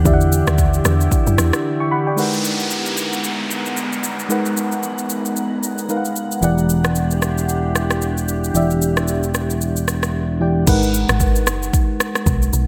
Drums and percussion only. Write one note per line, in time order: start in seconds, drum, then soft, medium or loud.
0.05 kick loud
0.05 shaker medium
0.21 shaker soft
0.32 shaker medium
0.47 cross-stick loud
0.47 shaker soft
0.58 kick loud
0.58 shaker medium
0.74 shaker medium
0.85 cross-stick medium
0.85 shaker medium
1.01 shaker medium
1.12 kick loud
1.12 shaker medium
1.27 shaker medium
1.38 cross-stick loud
1.38 shaker medium
1.53 cross-stick medium
1.53 shaker medium
2.18 shaker medium
2.33 shaker soft
2.45 shaker medium
2.59 shaker soft
2.71 shaker medium
2.86 shaker medium
2.97 shaker medium
3.13 shaker medium
3.24 shaker medium
3.51 shaker medium
3.66 shaker soft
3.77 shaker medium
3.93 shaker soft
4.04 shaker medium
4.19 shaker medium
4.30 shaker medium
4.46 shaker soft
4.57 shaker medium
4.72 shaker soft
4.83 shaker medium
4.98 shaker soft
5.10 shaker medium
5.25 shaker medium
5.37 shaker medium
5.63 shaker medium
5.78 shaker soft
5.89 shaker medium
6.05 shaker soft
6.16 shaker medium
6.32 shaker medium
6.43 shaker medium
6.58 shaker soft
6.70 shaker medium
6.84 cross-stick medium
6.84 shaker soft
6.95 shaker medium
7.11 shaker medium
7.22 cross-stick medium
7.22 shaker medium
7.38 shaker medium
7.49 shaker medium
7.75 cross-stick medium
7.75 shaker medium
7.91 cross-stick medium
7.91 shaker soft
8.02 shaker medium
8.18 shaker soft
8.28 shaker medium
8.44 shaker medium
8.55 shaker medium
8.70 shaker soft
8.82 shaker medium
8.97 cross-stick medium
8.97 shaker soft
9.08 shaker medium
9.23 shaker medium
9.34 cross-stick medium
9.34 shaker medium
9.50 shaker medium
9.61 shaker medium
9.76 shaker medium
9.88 cross-stick medium
9.88 shaker medium
10.03 cross-stick medium
10.03 shaker soft
10.67 kick loud
10.67 crash loud
10.67 shaker medium
10.83 shaker medium
10.94 shaker medium
11.09 cross-stick loud
11.09 shaker soft
11.20 kick loud
11.20 shaker medium
11.36 shaker medium
11.47 cross-stick loud
11.47 shaker medium
11.63 shaker medium
11.73 kick loud
11.73 shaker medium
12.00 cross-stick loud
12.00 shaker medium
12.15 cross-stick medium
12.15 shaker medium
12.26 kick loud
12.26 shaker medium
12.42 shaker medium
12.53 shaker medium